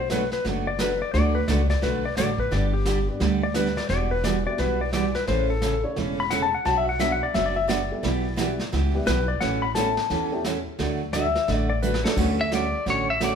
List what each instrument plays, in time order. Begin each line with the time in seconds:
Already playing: upright bass B1
0.00 electric slide guitar C5
0.10 steel-string acoustic guitar B2 F#3 A3 D4 F#4, electric slide guitar B4, snare, hi-hat pedal
0.31 electric slide guitar B4, snare
0.45 upright bass F#1, steel-string acoustic guitar B2 F#3 A3 D4 F#4, brush sweep, snare
0.67 electric slide guitar D5
0.79 steel-string acoustic guitar B2 F#3 A3 D4 F#4, electric slide guitar B4, snare, hi-hat pedal
1.02 electric slide guitar D5
1.14 upright bass D2, steel-string acoustic guitar D3 F#3 A3 D4 F#4, upright piano A3 D4 F#4 A4 D5, electric slide guitar D5, brush sweep, snare
1.35 electric slide guitar B4
1.48 upright bass C#2, steel-string acoustic guitar D3 F#3 A3 D4 F#4, electric slide guitar D5, snare, hi-hat pedal
1.70 electric slide guitar D5, snare
1.82 upright bass B1, steel-string acoustic guitar D3 F#3 A3 D4 F#4, electric slide guitar B4, brush sweep, snare
2.05 electric slide guitar D5
2.17 upright bass A1, steel-string acoustic guitar D3 F#3 A3 D4 F#4, electric slide guitar D5, snare, hi-hat pedal
2.38 electric slide guitar B4, kick
2.51 upright bass G1, steel-string acoustic guitar D3 G3 B3 D4 G4, electric slide guitar D5, brush sweep, snare
2.73 electric slide guitar G4
2.85 steel-string acoustic guitar D3 G3 B3 D4 G4, snare, hi-hat pedal
3.08 upright piano B3 D4 G4 B4 D5
3.20 upright bass D2, steel-string acoustic guitar D3 G3 B3 D4 G4, brush sweep, snare
3.43 electric slide guitar D5
3.54 steel-string acoustic guitar D3 G3 B3 D4 G4, electric slide guitar B4, snare, hi-hat pedal
3.66 snare
3.77 electric slide guitar D5, snare
3.89 upright bass E1, steel-string acoustic guitar E3 G3 B3 F#4, electric slide guitar D5, brush sweep, snare
4.11 electric slide guitar B4
4.24 steel-string acoustic guitar E3 G3 B3 F#4, electric slide guitar D5, snare, hi-hat pedal
4.46 upright piano B3 E4 F#4 G4 B4, electric slide guitar D5
4.58 upright bass B1, steel-string acoustic guitar E3 G3 B3 F#4, electric slide guitar B4, brush sweep, snare
4.81 electric slide guitar D5
4.93 steel-string acoustic guitar E3 G3 B3 F#4, electric slide guitar D5, snare, hi-hat pedal
5.15 electric slide guitar B4, snare
5.27 upright bass A1, steel-string acoustic guitar C#3 E3 A3 C#4 A4, electric slide guitar C5, brush sweep, snare
5.50 electric slide guitar A4
5.62 steel-string acoustic guitar C#3 E3 A3 C#4 A4, snare, hi-hat pedal
5.83 upright piano A3 C#4 E4 A4 C#5
5.96 upright bass E1, steel-string acoustic guitar C#3 E3 A3 C#4 A4, brush sweep, snare
6.20 electric slide guitar B5
6.30 steel-string acoustic guitar C#3 E3 A3 C#4 A4, electric slide guitar F#5, snare, hi-hat pedal
6.42 electric slide guitar A5
6.54 electric slide guitar F#5
6.65 upright bass B1, steel-string acoustic guitar B2 F#3 B3 D4 F#4, electric slide guitar A5, brush sweep, snare
6.78 electric slide guitar E5
6.89 electric slide guitar F#5
6.99 steel-string acoustic guitar B2 F#3 B3 D4 F#4, upright piano F#3 B3 D4 F#4 B4, electric slide guitar E5, snare, hi-hat pedal
7.12 electric slide guitar F#5
7.23 electric slide guitar D5
7.34 upright bass F#1, steel-string acoustic guitar B2 F#3 B3 D4 F#4, electric slide guitar E5, brush sweep, snare
7.46 electric slide guitar D5
7.56 electric slide guitar E5
7.68 steel-string acoustic guitar B2 F#3 B3 D4 F#4, electric slide guitar D5, snare, hi-hat pedal
7.91 upright piano G3 B3 E4 G4 A4
8.03 upright bass B1, steel-string acoustic guitar B2 E3 B3 E4 G4, brush sweep, snare
8.36 steel-string acoustic guitar B2 E3 B3 E4 G4, upright piano G3 B3 E4 G4 B4, snare, hi-hat pedal
8.59 snare
8.72 upright bass C#2, steel-string acoustic guitar B2 E3 B3 E4 G4, brush sweep, snare
8.94 upright piano G3 B3 E4 G4 B4
9.06 upright bass B1, steel-string acoustic guitar B2 E3 B3 E4 G4, electric slide guitar B4, snare, hi-hat pedal
9.28 electric slide guitar D5
9.41 upright bass A1, steel-string acoustic guitar B2 E3 A3 C#4 A4, electric slide guitar F#5, brush sweep, snare
9.62 electric slide guitar B5
9.75 steel-string acoustic guitar B2 E3 A3 C#4 A4, upright piano A3 B3 C#4 E4 A4, electric slide guitar A5, snare, hi-hat pedal
9.97 snare
10.10 upright bass E2, steel-string acoustic guitar B2 E3 A3 C#4 A4, brush sweep, snare
10.31 upright piano A3 B3 C#4 E4 G4
10.44 steel-string acoustic guitar B2 E3 A3 C#4 A4, snare, hi-hat pedal
10.79 upright bass D2, steel-string acoustic guitar D3 F#3 A3 D4 F#4, upright piano F#3 A3 D4 F#4 A4, brush sweep, snare
11.13 steel-string acoustic guitar D3 F#3 A3 D4 F#4, electric slide guitar E5, snare, hi-hat pedal
11.35 snare
11.48 upright bass A1, steel-string acoustic guitar D3 F#3 A3 D4 F#4, brush sweep, snare
11.57 electric slide guitar D5
11.70 electric slide guitar D5
11.82 steel-string acoustic guitar D3 F#3 A3 D4 F#4, electric slide guitar B4, hi-hat pedal
11.94 snare
12.04 upright piano A3 C#4 D4 F#4 A4, electric slide guitar A4, snare
12.17 upright bass D2, steel-string acoustic guitar D3 F#3 A3 C#4 F#4, brush sweep, kick, snare, crash
12.41 pedal steel guitar E5
12.51 steel-string acoustic guitar D3 F#3 A3 C#4 F#4, pedal steel guitar D5, snare, hi-hat pedal
12.86 upright bass A1, steel-string acoustic guitar D3 F#3 A3 C#4 F#4, brush sweep, snare
12.90 pedal steel guitar C#5
13.10 pedal steel guitar E5
13.21 steel-string acoustic guitar D3 F#3 A3 C#4 F#4, pedal steel guitar D5, snare, hi-hat pedal